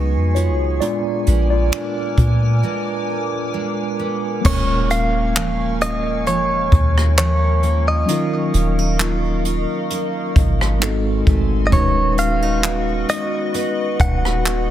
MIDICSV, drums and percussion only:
0, 0, Header, 1, 2, 480
1, 0, Start_track
1, 0, Tempo, 909091
1, 429, Time_signature, 4, 2, 24, 8
1, 7764, End_track
2, 0, Start_track
2, 0, Title_t, "Drums"
2, 189, Note_on_c, 9, 42, 53
2, 242, Note_off_c, 9, 42, 0
2, 430, Note_on_c, 9, 42, 65
2, 483, Note_off_c, 9, 42, 0
2, 669, Note_on_c, 9, 42, 61
2, 722, Note_off_c, 9, 42, 0
2, 908, Note_on_c, 9, 42, 71
2, 912, Note_on_c, 9, 26, 105
2, 961, Note_off_c, 9, 42, 0
2, 965, Note_off_c, 9, 26, 0
2, 1149, Note_on_c, 9, 36, 90
2, 1150, Note_on_c, 9, 42, 65
2, 1202, Note_off_c, 9, 36, 0
2, 1203, Note_off_c, 9, 42, 0
2, 2348, Note_on_c, 9, 49, 92
2, 2349, Note_on_c, 9, 36, 117
2, 2401, Note_off_c, 9, 49, 0
2, 2402, Note_off_c, 9, 36, 0
2, 2589, Note_on_c, 9, 42, 63
2, 2641, Note_off_c, 9, 42, 0
2, 2828, Note_on_c, 9, 42, 73
2, 2832, Note_on_c, 9, 39, 105
2, 2880, Note_off_c, 9, 42, 0
2, 2885, Note_off_c, 9, 39, 0
2, 3069, Note_on_c, 9, 42, 69
2, 3122, Note_off_c, 9, 42, 0
2, 3309, Note_on_c, 9, 42, 69
2, 3362, Note_off_c, 9, 42, 0
2, 3548, Note_on_c, 9, 42, 65
2, 3549, Note_on_c, 9, 36, 98
2, 3601, Note_off_c, 9, 36, 0
2, 3601, Note_off_c, 9, 42, 0
2, 3683, Note_on_c, 9, 37, 85
2, 3736, Note_off_c, 9, 37, 0
2, 3793, Note_on_c, 9, 39, 97
2, 3845, Note_off_c, 9, 39, 0
2, 4029, Note_on_c, 9, 42, 55
2, 4082, Note_off_c, 9, 42, 0
2, 4270, Note_on_c, 9, 42, 70
2, 4322, Note_off_c, 9, 42, 0
2, 4508, Note_on_c, 9, 42, 60
2, 4561, Note_off_c, 9, 42, 0
2, 4752, Note_on_c, 9, 39, 107
2, 4805, Note_off_c, 9, 39, 0
2, 4990, Note_on_c, 9, 42, 70
2, 5043, Note_off_c, 9, 42, 0
2, 5230, Note_on_c, 9, 42, 70
2, 5283, Note_off_c, 9, 42, 0
2, 5469, Note_on_c, 9, 42, 64
2, 5470, Note_on_c, 9, 36, 102
2, 5522, Note_off_c, 9, 36, 0
2, 5522, Note_off_c, 9, 42, 0
2, 5604, Note_on_c, 9, 37, 83
2, 5657, Note_off_c, 9, 37, 0
2, 5712, Note_on_c, 9, 42, 61
2, 5714, Note_on_c, 9, 39, 100
2, 5764, Note_off_c, 9, 42, 0
2, 5767, Note_off_c, 9, 39, 0
2, 5950, Note_on_c, 9, 36, 99
2, 5950, Note_on_c, 9, 42, 56
2, 6003, Note_off_c, 9, 36, 0
2, 6003, Note_off_c, 9, 42, 0
2, 6190, Note_on_c, 9, 36, 111
2, 6190, Note_on_c, 9, 42, 70
2, 6243, Note_off_c, 9, 36, 0
2, 6243, Note_off_c, 9, 42, 0
2, 6430, Note_on_c, 9, 42, 61
2, 6483, Note_off_c, 9, 42, 0
2, 6674, Note_on_c, 9, 39, 105
2, 6726, Note_off_c, 9, 39, 0
2, 6911, Note_on_c, 9, 42, 71
2, 6964, Note_off_c, 9, 42, 0
2, 7151, Note_on_c, 9, 42, 75
2, 7204, Note_off_c, 9, 42, 0
2, 7390, Note_on_c, 9, 36, 97
2, 7391, Note_on_c, 9, 42, 68
2, 7443, Note_off_c, 9, 36, 0
2, 7444, Note_off_c, 9, 42, 0
2, 7525, Note_on_c, 9, 37, 83
2, 7578, Note_off_c, 9, 37, 0
2, 7635, Note_on_c, 9, 39, 98
2, 7688, Note_off_c, 9, 39, 0
2, 7764, End_track
0, 0, End_of_file